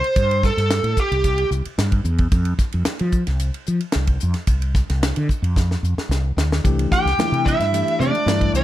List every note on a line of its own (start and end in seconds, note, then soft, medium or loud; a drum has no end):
0.00 0.45 C5 medium
0.00 ride medium
0.16 0.49 G2 medium
0.16 kick medium
0.16 hi-hat pedal medium
0.16 ride medium
0.31 ride soft
0.43 1.00 A4 medium
0.43 kick medium
0.43 snare soft
0.43 hi-hat pedal medium
0.57 0.79 G2 medium
0.57 snare soft
0.57 ride medium
0.70 snare loud
0.70 hi-hat pedal medium
0.70 ride medium
0.83 0.94 A2 medium
0.83 ride soft
0.97 1.49 G4 medium
0.97 kick medium
0.97 hi-hat pedal medium
1.11 1.43 C2 medium
1.11 ride medium
1.24 kick medium
1.24 hi-hat pedal medium
1.24 ride medium
1.38 ride soft
1.50 1.62 C2 medium
1.50 hi-hat pedal medium
1.65 muted fretless electric bass stroke soft
1.65 ride medium
1.78 2.00 G2 medium
1.78 snare medium
1.78 hi-hat pedal medium
1.78 ride medium
1.92 kick medium
1.92 ride medium
2.04 2.26 E2 medium
2.04 hi-hat pedal medium
2.18 kick medium
2.18 ride medium
2.32 2.54 F2 medium
2.32 kick medium
2.32 hi-hat pedal medium
2.32 ride medium
2.45 ride soft
2.58 muted fretless electric bass stroke soft
2.58 kick medium
2.58 snare soft
2.58 hi-hat pedal medium
2.72 2.84 F2 medium
2.72 ride medium
2.85 muted fretless electric bass stroke soft
2.85 snare medium
2.85 hi-hat pedal medium
2.85 ride medium
2.99 3.22 F3 medium
2.99 ride medium
3.12 kick medium
3.12 hi-hat pedal medium
3.27 3.49 C2 medium
3.27 snare soft
3.27 ride medium
3.40 hi-hat pedal medium
3.40 ride medium
3.54 ride soft
3.66 3.79 F3 medium
3.66 hi-hat pedal medium
3.80 ride medium
3.92 4.17 C2 medium
3.92 snare medium
3.92 hi-hat pedal medium
3.92 ride medium
4.07 kick medium
4.07 ride medium
4.20 4.33 F2 medium
4.20 hi-hat pedal medium
4.34 snare soft
4.34 ride medium
4.47 4.81 C2 medium
4.47 kick medium
4.47 hi-hat pedal medium
4.47 ride medium
4.62 ride medium
4.75 kick medium
4.75 snare soft
4.75 hi-hat pedal medium
4.89 5.11 C2 medium
4.89 snare soft
4.89 ride medium
5.03 snare medium
5.03 hi-hat pedal medium
5.03 ride medium
5.16 5.27 D3 medium
5.16 ride medium
5.29 kick medium
5.29 hi-hat pedal medium
5.42 5.75 F2 medium
5.42 ride medium
5.56 kick medium
5.56 snare medium
5.56 hi-hat pedal medium
5.71 snare soft
5.83 5.94 F2 medium
5.83 hi-hat pedal medium
5.98 muted fretless electric bass stroke soft
5.98 snare medium
6.09 6.31 C2 medium
6.09 snare medium
6.09 hi-hat pedal medium
6.37 6.59 D2 medium
6.37 snare medium
6.37 hi-hat pedal medium
6.52 snare medium
6.64 6.86 C2 medium
6.64 7.07 E3 medium
6.64 7.07 A3 medium
6.64 7.07 D4 medium
6.64 7.07 G4 medium
6.64 kick medium
6.64 hi-hat pedal medium
6.64 ride medium
6.64 muted conga soft
6.79 ride medium
6.92 7.43 G4 medium
6.92 7.48 G5 medium
6.92 muted fretless electric bass stroke soft
6.92 kick medium
6.92 snare soft
6.92 hi-hat pedal medium
7.05 7.16 C2 medium
7.05 snare soft
7.05 ride medium
7.19 7.61 E3 medium
7.19 7.61 A3 medium
7.19 7.61 D4 medium
7.19 7.61 E4 medium
7.19 snare medium
7.19 hi-hat pedal medium
7.19 ride medium
7.19 muted conga soft
7.19 high conga medium
7.32 7.54 C3 medium
7.32 ride soft
7.46 7.98 E4 medium
7.46 8.00 E5 loud
7.46 kick medium
7.46 hi-hat pedal medium
7.60 7.81 G2 medium
7.60 snare soft
7.60 ride medium
7.73 8.15 E3 medium
7.73 8.15 A3 medium
7.73 8.15 D4 medium
7.73 8.15 G4 medium
7.73 hi-hat pedal medium
7.73 ride medium
7.88 ride soft
7.99 8.11 C3 medium
7.99 8.52 D4 medium
7.99 8.51 D5 medium
7.99 hi-hat pedal medium
7.99 muted conga soft
7.99 high conga medium
8.15 ride soft
8.26 8.48 G2 medium
8.26 8.64 E3 medium
8.26 8.64 A3 medium
8.26 8.64 D4 medium
8.26 8.64 E4 medium
8.26 snare medium
8.26 hi-hat pedal medium
8.26 ride medium
8.26 high conga medium
8.41 kick medium
8.41 ride soft
8.53 8.64 C2 medium
8.53 8.64 D4 medium
8.53 8.64 D5 medium
8.53 hi-hat pedal medium